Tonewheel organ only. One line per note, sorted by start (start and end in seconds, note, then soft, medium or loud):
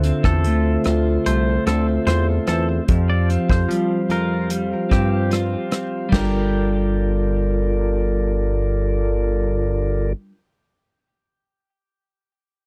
0.00 2.82 F4 medium
0.00 2.83 A4 medium
0.00 2.84 C5 medium
0.00 2.85 E5 medium
2.86 6.08 F4 medium
2.86 6.08 G4 medium
2.86 6.09 C5 medium
2.92 2.96 E5 medium
2.98 6.13 F5 medium
6.11 10.13 F4 medium
6.11 10.13 A4 medium
6.11 10.13 A#4 medium
6.11 10.12 D5 medium